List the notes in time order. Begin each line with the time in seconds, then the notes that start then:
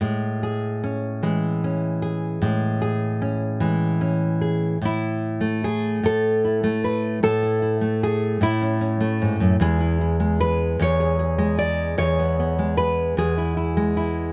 0.01 A2 G#3
0.43 G#4
0.84 C#4
1.23 E3 G#3
1.64 C#4
2.02 G#4
2.42 A2 G#3
2.82 G#4
3.22 C#4
3.60 E3 G#3
4.01 C#4
4.41 G#4
4.82 A2 E4
5.41 A3
5.64 G#4
6.03 A2 A4
6.44 E4
6.64 A3
6.84 B4
7.23 A2 A4
7.43 E4
7.62 E4
7.81 A3
8.03 G#4
8.41 A2 E4
8.62 C#4
8.81 C#4
9.00 A3
9.22 G#2
9.40 F#2
9.60 E2 G#3 E4 G#4
9.80 E4
10.01 E4
10.20 G#3
10.40 B4
10.79 E2 C#5
11.00 G#4
11.19 G#4
11.38 G#3
11.59 D5
11.98 E2 C#5
12.19 B3
12.39 B3
12.59 G#3
12.77 B4
13.17 E2 G#4
13.38 E4
13.57 E4
13.77 G#3
13.97 E4